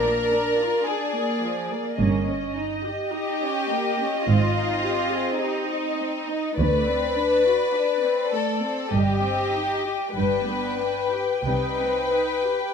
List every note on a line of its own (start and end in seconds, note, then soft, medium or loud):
0.00 0.65 A#1 medium
0.00 0.66 A#2 soft
0.00 0.31 D4 soft
0.00 0.84 A#4 medium
0.00 1.94 D5 soft
0.04 0.32 A#3 soft
0.32 0.59 D4 soft
0.60 0.88 F4 soft
0.86 1.14 D4 soft
0.86 1.99 G#4 medium
1.15 1.43 A#3 soft
1.44 1.71 F3 soft
1.71 1.98 A#3 soft
1.99 2.90 G1 medium
1.99 2.90 G2 medium
1.99 2.25 A#3 soft
1.99 2.26 C#4 soft
1.99 6.60 D#5 soft
2.27 2.55 C#4 soft
2.55 2.83 D#4 soft
2.83 3.11 G4 soft
3.11 3.41 D#4 soft
3.11 4.23 G4 medium
3.41 3.70 C#4 soft
3.69 3.98 A#3 soft
3.99 4.27 C#4 soft
4.27 5.19 G#1 medium
4.27 5.19 G#2 medium
4.27 5.97 C4 soft
4.27 5.40 F4 medium
4.58 4.85 D#4 soft
4.84 5.12 G4 soft
5.12 5.40 G#4 soft
5.41 6.57 D#4 medium
5.41 5.70 G4 soft
5.69 5.99 D#4 soft
5.98 6.29 C4 soft
6.27 6.58 D#4 soft
6.57 7.54 D2 medium
6.57 7.54 D2 soft
6.57 6.86 A3 soft
6.57 8.31 B4 medium
6.57 8.89 D5 soft
6.86 7.16 C4 soft
7.16 7.46 D4 soft
7.45 7.75 F#4 soft
7.73 8.03 D4 soft
8.03 8.33 C4 soft
8.32 8.63 A3 soft
8.32 8.92 A4 soft
8.61 8.92 C4 soft
8.91 9.93 G1 soft
8.91 9.93 G2 soft
8.91 9.21 G3 soft
8.91 10.16 G4 medium
8.91 10.15 D#5 soft
9.21 9.53 C4 soft
9.52 9.84 D#4 soft
9.83 10.15 G4 soft
10.14 11.22 G1 soft
10.14 11.22 G2 soft
10.14 10.45 G3 soft
10.14 10.77 D4 soft
10.14 11.43 B4 medium
10.14 12.74 G5 soft
10.45 10.78 B3 soft
10.78 11.12 D4 soft
11.12 11.46 G4 soft
11.45 12.54 C2 soft
11.45 12.55 C3 soft
11.45 11.77 G3 soft
11.45 12.10 D#4 soft
11.45 12.74 B4 medium
11.79 12.12 C4 soft
12.12 12.45 D#4 soft
12.44 12.74 G4 soft